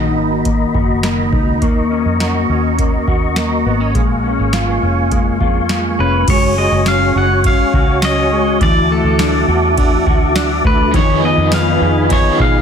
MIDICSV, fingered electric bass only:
0, 0, Header, 1, 2, 480
1, 0, Start_track
1, 0, Key_signature, 6, "major"
1, 0, Tempo, 582524
1, 1334, Time_signature, 4, 2, 24, 8
1, 10396, End_track
2, 0, Start_track
2, 0, Title_t, "Fingered electric bass"
2, 0, Program_c, 0, 33
2, 0, Note_on_c, 0, 34, 75
2, 136, Note_off_c, 0, 34, 0
2, 136, Note_on_c, 0, 32, 82
2, 591, Note_off_c, 0, 32, 0
2, 613, Note_on_c, 0, 30, 85
2, 1092, Note_on_c, 0, 37, 82
2, 1105, Note_off_c, 0, 30, 0
2, 1333, Note_off_c, 0, 37, 0
2, 1333, Note_on_c, 0, 39, 76
2, 1676, Note_off_c, 0, 39, 0
2, 1694, Note_on_c, 0, 41, 74
2, 2036, Note_off_c, 0, 41, 0
2, 2054, Note_on_c, 0, 39, 69
2, 2510, Note_off_c, 0, 39, 0
2, 2535, Note_on_c, 0, 39, 79
2, 2991, Note_off_c, 0, 39, 0
2, 3015, Note_on_c, 0, 32, 90
2, 3243, Note_off_c, 0, 32, 0
2, 3254, Note_on_c, 0, 34, 76
2, 3596, Note_off_c, 0, 34, 0
2, 3617, Note_on_c, 0, 32, 75
2, 3958, Note_off_c, 0, 32, 0
2, 3977, Note_on_c, 0, 29, 68
2, 4454, Note_on_c, 0, 41, 84
2, 4467, Note_off_c, 0, 29, 0
2, 4910, Note_off_c, 0, 41, 0
2, 4935, Note_on_c, 0, 29, 80
2, 5163, Note_off_c, 0, 29, 0
2, 5174, Note_on_c, 0, 30, 96
2, 5516, Note_off_c, 0, 30, 0
2, 5536, Note_on_c, 0, 30, 94
2, 5877, Note_off_c, 0, 30, 0
2, 5896, Note_on_c, 0, 30, 85
2, 6237, Note_off_c, 0, 30, 0
2, 6373, Note_on_c, 0, 37, 98
2, 7061, Note_off_c, 0, 37, 0
2, 7091, Note_on_c, 0, 38, 101
2, 7435, Note_off_c, 0, 38, 0
2, 7453, Note_on_c, 0, 38, 100
2, 7796, Note_off_c, 0, 38, 0
2, 7812, Note_on_c, 0, 40, 85
2, 8269, Note_off_c, 0, 40, 0
2, 8292, Note_on_c, 0, 38, 93
2, 8749, Note_off_c, 0, 38, 0
2, 8772, Note_on_c, 0, 38, 94
2, 9012, Note_off_c, 0, 38, 0
2, 9012, Note_on_c, 0, 41, 108
2, 9355, Note_off_c, 0, 41, 0
2, 9374, Note_on_c, 0, 41, 90
2, 9716, Note_off_c, 0, 41, 0
2, 9733, Note_on_c, 0, 41, 88
2, 10076, Note_off_c, 0, 41, 0
2, 10214, Note_on_c, 0, 47, 91
2, 10396, Note_off_c, 0, 47, 0
2, 10396, End_track
0, 0, End_of_file